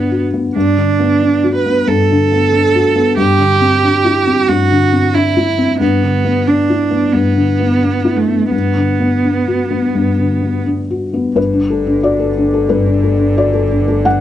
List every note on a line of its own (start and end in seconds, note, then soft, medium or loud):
0.00 0.52 G2 soft
0.00 0.57 D3 soft
0.00 0.22 B3 medium
0.00 0.34 B3 soft
0.00 0.58 D4 soft
0.00 0.11 F#4 soft
0.11 0.46 F#4 soft
0.34 0.55 B3 soft
0.56 1.84 G2 medium
0.56 1.51 D4 medium
0.77 1.12 D3 soft
1.00 1.35 B3 soft
1.22 1.57 D4 soft
1.44 1.78 F#4 soft
1.55 1.89 B4 medium
1.66 2.00 B3 soft
1.87 3.13 G2 medium
1.87 3.17 A4 medium
2.11 2.45 D3 soft
2.32 2.66 B3 soft
2.52 2.87 D4 soft
2.75 3.09 F#4 soft
2.96 3.17 B3 soft
3.17 4.45 G2 medium
3.17 4.49 G4 loud
3.39 3.74 D3 soft
3.61 3.96 C4 soft
3.84 4.18 D4 soft
4.05 4.40 E4 soft
4.27 4.62 C4 soft
4.48 5.77 G2 medium
4.48 5.16 F#4 medium
4.71 5.06 D3 soft
4.92 5.28 C4 soft
5.14 5.49 D4 soft
5.14 5.79 E4 medium
5.37 5.72 E4 soft
5.58 5.80 C4 soft
5.79 7.11 G2 medium
5.79 6.49 B3 medium
6.03 6.39 D3 soft
6.25 6.61 B3 soft
6.46 6.83 D4 soft
6.46 7.14 D4 medium
6.70 7.06 E4 soft
6.91 7.27 B3 soft
7.13 8.48 G2 soft
7.13 8.18 B3 medium
7.37 7.73 D3 soft
7.60 7.96 B3 soft
7.83 8.19 D4 soft
8.05 8.43 E4 soft
8.16 8.50 A3 medium
8.27 8.52 B3 soft
8.50 9.91 G2 soft
8.50 10.61 B3 medium
8.75 9.15 D3 soft
9.00 9.39 B3 soft
9.24 9.62 D4 soft
9.48 9.86 F#4 soft
9.71 10.09 B3 soft
9.95 11.32 G2 soft
10.18 10.56 D3 soft
10.42 10.80 B3 soft
10.66 11.04 D4 soft
10.90 11.28 F#4 soft
11.13 11.36 B3 soft
11.36 14.21 G1 medium
11.36 12.66 G2 medium
11.36 14.21 D3 soft
11.36 12.00 B4 medium
11.53 11.80 D4 soft
11.70 11.97 A4 soft
11.87 12.14 D4 soft
12.03 12.30 F#4 soft
12.03 12.66 D5 medium
12.19 12.46 A4 soft
12.37 12.64 D4 soft
12.54 12.80 A4 soft
12.69 14.01 G2 medium
12.69 13.33 B4 medium
12.86 13.14 D4 soft
13.04 13.31 A4 soft
13.19 13.47 D4 soft
13.37 13.64 F#4 soft
13.37 14.01 D5 medium
13.53 13.81 A4 soft
13.71 13.98 D4 soft
13.88 14.05 A4 soft
14.05 14.21 G2 medium
14.05 14.21 F#5 medium